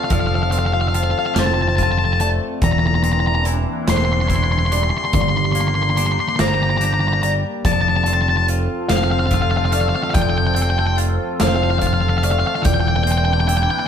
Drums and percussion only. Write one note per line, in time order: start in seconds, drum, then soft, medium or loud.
0.10 kick loud
0.10 closed hi-hat medium
0.52 closed hi-hat medium
0.94 closed hi-hat medium
1.36 snare loud
1.36 closed hi-hat medium
1.78 kick medium
1.78 closed hi-hat medium
2.20 closed hi-hat medium
2.62 kick loud
2.62 closed hi-hat medium
3.04 closed hi-hat medium
3.45 closed hi-hat medium
3.88 snare medium
3.88 closed hi-hat medium
4.30 kick medium
4.30 closed hi-hat medium
4.72 closed hi-hat medium
5.13 kick loud
5.13 closed hi-hat medium
5.55 closed hi-hat medium
5.97 closed hi-hat medium
6.39 snare loud
6.39 closed hi-hat medium
6.81 closed hi-hat medium
7.23 closed hi-hat medium
7.65 kick loud
7.65 closed hi-hat medium
8.06 closed hi-hat medium
8.48 closed hi-hat medium
8.89 snare medium
8.89 closed hi-hat medium
9.31 kick medium
9.31 closed hi-hat medium
9.72 closed hi-hat medium
10.14 kick loud
10.14 closed hi-hat medium
10.56 closed hi-hat medium
10.98 closed hi-hat medium
11.40 snare loud
11.40 closed hi-hat medium
11.81 kick medium
11.81 closed hi-hat medium
12.23 closed hi-hat medium
12.65 kick loud
12.65 closed hi-hat medium
13.07 closed hi-hat medium
13.49 closed hi-hat medium